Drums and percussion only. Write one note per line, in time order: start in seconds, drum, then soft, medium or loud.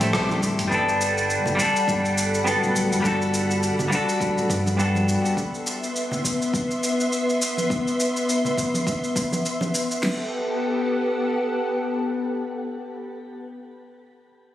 0.01 closed hi-hat medium
0.01 high tom medium
0.01 high conga medium
0.01 shaker soft
0.13 cross-stick loud
0.13 mid tom medium
0.13 shaker soft
0.30 mid tom medium
0.30 high conga medium
0.30 shaker soft
0.42 kick medium
0.42 shaker medium
0.59 closed hi-hat medium
0.59 mid tom medium
0.59 shaker soft
0.71 kick loud
0.71 shaker soft
0.89 shaker soft
1.01 shaker medium
1.18 shaker soft
1.30 shaker soft
1.46 low conga medium
1.46 shaker soft
1.59 kick medium
1.59 shaker medium
1.76 shaker soft
1.88 kick loud
1.88 shaker soft
2.05 shaker soft
2.18 shaker medium
2.34 shaker soft
2.47 shaker soft
2.63 shaker soft
2.76 shaker medium
2.91 high conga soft
2.91 shaker soft
3.04 kick loud
3.04 shaker soft
3.22 shaker soft
3.34 shaker medium
3.51 shaker soft
3.63 shaker soft
3.79 low conga medium
3.79 shaker soft
3.91 kick medium
3.91 shaker medium
4.09 shaker soft
4.21 kick loud
4.21 shaker soft
4.38 shaker soft
4.50 kick medium
4.50 shaker medium
4.66 high conga medium
4.66 shaker soft
4.79 shaker soft
4.95 high conga medium
4.95 shaker soft
5.09 shaker medium
5.25 shaker soft
5.37 kick loud
5.37 shaker soft
5.55 shaker soft
5.67 shaker medium
5.83 shaker soft
5.96 shaker soft
6.11 low conga medium
6.11 shaker soft
6.24 kick medium
6.24 shaker medium
6.42 shaker soft
6.54 kick loud
6.54 shaker soft
6.71 shaker soft
6.83 shaker medium
7.00 shaker soft
7.13 shaker soft
7.29 shaker soft
7.42 shaker medium
7.57 high conga medium
7.57 shaker soft
7.70 kick loud
7.70 shaker soft
7.87 shaker soft
8.00 shaker medium
8.16 shaker soft
8.29 shaker soft
8.45 low conga medium
8.45 shaker soft
8.58 kick medium
8.58 shaker medium
8.74 high conga medium
8.74 shaker soft
8.87 kick loud
8.87 shaker soft
9.04 shaker soft
9.16 kick medium
9.16 shaker medium
9.32 high conga medium
9.32 shaker soft
9.46 shaker soft
9.61 high conga medium
9.61 shaker soft
9.75 shaker medium
9.91 shaker soft
10.03 snare medium
10.03 crash medium